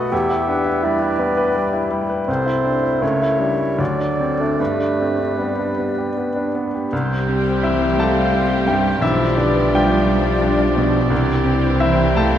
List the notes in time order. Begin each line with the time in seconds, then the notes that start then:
Already playing: A3 E4 F#4 A4 B4 D#5 F#5
0.12 E2 G4 E5
0.30 E4
0.48 D4 B4
0.66 E4
0.83 G3 E4 B4 D5 G5
1.02 E4
1.19 G3 B3
1.37 B4
1.55 G3 G4
1.73 E4
1.91 G3
2.09 B4
2.28 C2 C4 A4 C5
2.46 E4
2.65 D4
2.83 E4
3.02 C#2 A3 A#4 C#5 E5
3.22 E4
3.40 G3 D4
3.60 E4
3.79 D2 F#3 A4 D5
4.00 D4
4.20 C4
4.40 A3 D4
4.59 G2 A3 G4 B4 D5
4.80 D4
5.00 C4
5.19 D4
5.39 G3 B3
5.59 D4
5.78 B3
5.98 G4
6.17 B3
6.36 D4
6.55 B3
6.75 G4
6.91 C2 G3 C4 G4 C5
7.28 C4
7.63 E3 E4 C5 E5
7.98 A3 G4 A4 F5 A5
8.34 C4
8.66 G2 G3 G4 E5 G5
9.00 B1 E3 F3 D4 E4 F4 C5 D5 E5
9.37 D3 D4 B4 D5
9.73 G3 F4 G4 D5 G5
10.09 G4
10.43 D4
10.76 B2
11.10 C2 E3 G3 C4 E4 G4
11.44 C4
11.80 E3 C4 E4 C5 E5
12.16 A3 G4 A4 F5 A5